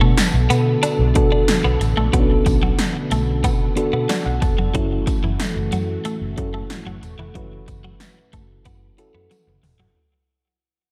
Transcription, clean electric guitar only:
0.01 A3
0.50 B3
0.83 D4
1.16 muted clean electric guitar stroke
1.32 D4
1.64 B3
1.81 muted clean electric guitar stroke
1.97 A3
2.13 B3
2.46 muted clean electric guitar stroke
2.63 F#3
3.12 A3
3.44 B3
3.77 muted clean electric guitar stroke
3.93 B3
4.10 F#3
4.42 muted clean electric guitar stroke
4.58 F#3
4.75 F#3
5.07 muted clean electric guitar stroke
5.24 E3
5.73 F#3
6.05 A3
6.38 muted clean electric guitar stroke
6.54 A3
6.87 F#3
7.03 muted clean electric guitar stroke
7.19 E3
7.35 F#3
7.68 muted clean electric guitar stroke
7.84 F#3
8.33 A3
8.66 B3
8.99 muted clean electric guitar stroke
9.15 B3
9.31 F#3
9.63 muted clean electric guitar stroke
9.80 F#3

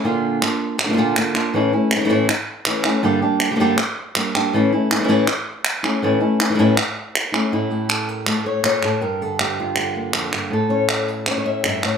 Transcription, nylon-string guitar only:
0.04 A#2 D3 A#3 D4 F4
0.42 A#3 D4 F4
0.78 muted nylon-string guitar stroke
0.84 D3 A#3 D4 F4
0.89 D3 A#3 D4 F4
0.93 D3 A#3 D4 F4
0.97 A#2 D3 A#3 D4 F4
1.16 D3 A#3 D4 F4
1.34 A#3 D4 F4
1.54 A2 E3 A3 C#4 E4
1.73 A3 C#4 E4
1.96 E3 A3 C#4 E4
2.00 E3 A3 C#4 E4
2.05 E3 A3 C#4 E4
2.09 A2 E3 A3 C#4 E4
2.28 muted nylon-string guitar stroke
2.66 E3 A3 C#4 E4
2.85 A3 C#4 E4
3.03 G2 D3 G3 A#3 D4 G4
3.22 G3 A#3 D4 G4
3.51 D3 G3 A#3 D4 G4
3.55 D3 G3 A#3 D4 G4
3.60 G2 D3 G3 A#3 D4 G4
3.78 muted nylon-string guitar stroke
4.16 G3 A#3 D4 G4
4.35 G3 A#3 D4 G4
4.53 A2 E3 A3 C#4 E4
4.72 A3 C#4 E4
4.91 A3 C#4 E4
5.00 E3 A3 C#4 E4
5.04 E3 A3 C#4 E4
5.08 A2 E3 A3 C#4 E4
5.27 muted nylon-string guitar stroke
5.83 A3 C#4 E4
6.02 A2 E3 A3 C#4 E4
6.20 A3 C#4 E4
6.40 A3 C#4 E4
6.50 E3 A3 C#4 E4
6.54 E3 A3 C#4 E4
6.59 A2 E3 A3 C#4 E4
7.32 A3 C#4 E4
7.52 A2 A3 C#4 E4
7.70 A3 G4
7.89 A4
8.09 A#4
8.27 A3 A4
8.46 C#5
8.63 A#2 C#5
8.83 A2 A4
9.01 G2 A#4
9.22 D3 A4
9.41 G4
9.60 F4
9.76 D3
9.96 A#3
10.14 F2
10.32 G2
10.50 A2 A4
10.69 C#4 C#5
10.90 D5
11.08 E5
11.27 C#4 C#5 D5
11.38 C#5
11.46 E5
11.64 G2 E5
11.83 A2 C#5

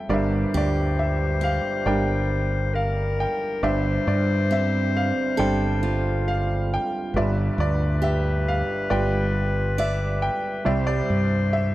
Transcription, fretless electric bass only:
0.09 G1
0.54 D2
1.86 G1
3.63 G1
4.07 G2
5.39 G1
7.14 G1
7.58 D2
8.91 G1
10.66 C2
11.10 G2

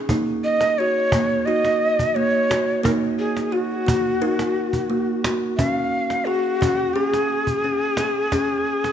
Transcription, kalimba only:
Already playing: G#4
0.10 A#3 D#4
0.80 F#4
1.14 A#3
1.47 D#4 F#4
2.16 A#3
2.50 F#4
2.83 A#3 D#4
3.52 F#4
3.87 A#3
4.22 D#4 A#4
4.90 A#3
5.25 F#4
5.59 C#4
6.27 G#4
6.61 C#4
6.96 C#4 G#4
7.64 C#4
7.98 G#4
8.32 C#4

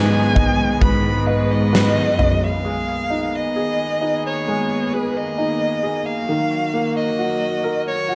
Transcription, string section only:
Already playing: D#3 G#3 B3 G#4
0.82 B4
2.63 D#3 A#3 B3 G#4
6.29 F#3 F#4
8.10 G#4

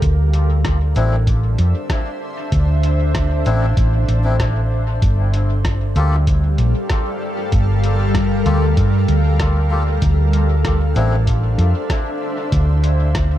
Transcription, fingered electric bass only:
0.02 D2
0.96 A1
1.59 F2
2.52 D2
3.46 A1
3.77 A1
4.08 A1
5.02 G1
5.96 D2
6.58 A#1
7.52 G1
8.46 D2
8.77 G2
9.08 D2
10.02 D2
10.96 A1
11.58 F2
12.52 D2

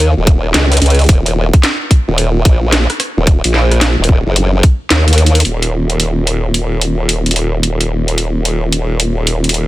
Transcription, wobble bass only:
Already playing: D#2
0.17 D#1
0.54 C#2
0.82 C#2
1.09 D#1
2.08 D#1
2.45 A#1
3.17 D#1
3.45 A#1
3.99 D#1
4.09 D#1
4.26 F#1
4.91 D#2
5.45 D#1

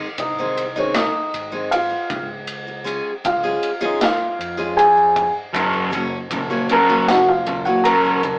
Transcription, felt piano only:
0.20 D#4 D#5
0.78 C#4 C#5
0.96 D#4 D#5
1.71 F4 F5
3.26 F4 F5
3.85 D#4 D#5
4.03 F4 F5
4.76 G#4 G#5
6.72 A#4 A#5
7.08 F#4 F#5
7.28 F4 F5
7.65 F#4 F#5
7.84 A#4 A#5

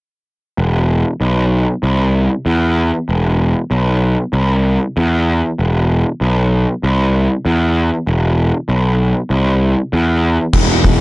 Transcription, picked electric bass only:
0.58 E1
1.21 B1
1.83 C2
2.46 E2
3.09 E1
3.71 B1
4.33 C2
4.97 E2
5.59 E1
6.21 B1
6.83 C2
7.45 E2
8.07 E1
8.69 B1
9.30 C2
9.93 E2
10.54 E1

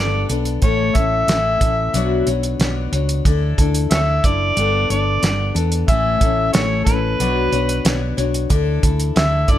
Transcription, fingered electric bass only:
Already playing: G1
0.29 B1
0.63 A1
0.95 A1
1.28 A1
1.61 A1
1.94 B1
2.27 B1
2.59 B1
2.92 C#2
3.25 D2
3.58 D2
3.91 D2
4.23 F#1
4.57 G1
4.90 G1
5.23 G1
5.55 E2
5.88 A1
6.21 A1
6.55 A1
6.86 A1
7.20 B1
7.52 B1
7.85 B1
8.18 B1
8.50 D2
8.83 D2
9.16 D2
9.48 F#1

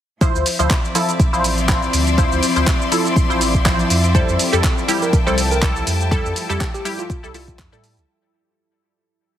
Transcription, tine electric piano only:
4.15 C5
5.02 A#4
5.27 C5
5.52 A#4
6.12 A4
6.50 G4
6.74 G4
6.99 F4
7.34 F4

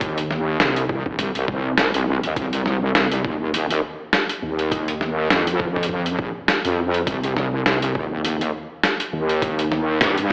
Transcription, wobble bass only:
Already playing: D#2
0.60 C2
1.06 A#1
1.19 C2
1.35 C2
1.48 C2
1.78 C2
2.23 D#2
2.36 C2
2.95 C2
3.25 D#2
4.42 D#2
5.31 F2
6.19 A#1
6.65 F2
7.07 C2
7.66 C2
7.95 D#2
9.13 D#2
10.01 G2

